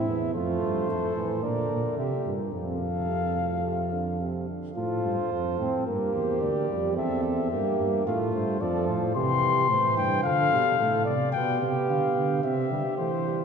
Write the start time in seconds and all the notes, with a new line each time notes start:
Already playing: E4 E5
0.07 E2 B3
0.34 F2 A3 F4 C5
0.62 G2
0.89 F2 A4
1.15 A2 E3
1.42 A#2 D3 A#4 D5
1.70 A#2
1.97 C3 G4 E5
2.25 G2 A#2
2.53 F2 C3 A4 F5
2.81 D3
3.09 C3
3.37 A2
3.64 C3
3.92 D3
4.20 C3
4.49 D3
4.76 A2 F4 A4 C5
5.04 G2
5.32 F2 A4
5.59 A2 C4
5.86 G2 A#3 G4 A#4
6.14 E2 C5
6.41 D2 D5
6.68 F2 G3
6.96 E2 C4 A4 E5
7.24 E5
7.51 G2 A#3 G4
7.80 G2
8.06 A2 A3 F4 F5
8.34 G2 C5
8.60 F2 F3 A4 D5
8.88 A2 C5
9.15 C3 E3 G4 C6
9.70 A2 E3 C5
9.97 G2 G5
10.24 D3 F3 A4 F5
10.52 B2 G3
10.79 A2 A3 A4
11.05 C3 D5
11.32 B2 B3 G4 G5
11.61 C3 B3
11.89 D3 F5
12.16 D3
12.43 C3 C4 G4 E5
12.71 D3 G3
12.98 E3 A3 C5
13.26 G3